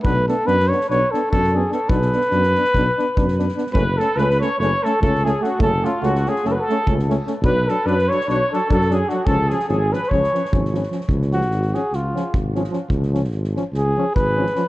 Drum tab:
SD |--o-ooooo-o--o--o-|-oooooooo-o--ooooo|--o-ooo-o-o--oo-o-|--o-ooooo-o--oo-o-|
BD |o-----------o-----|o-------o---o-----|o-----------o-----|o-----------o-----|

SD |--o-ooooo-o--oo-o-|--ooo-oooooo-ooooo|-oooooo-o-o---ooo-|-oooooo-o------oo-|
BD |o-----------o-----|o-------o---o-----|o-----------o-----|o-----------o-----|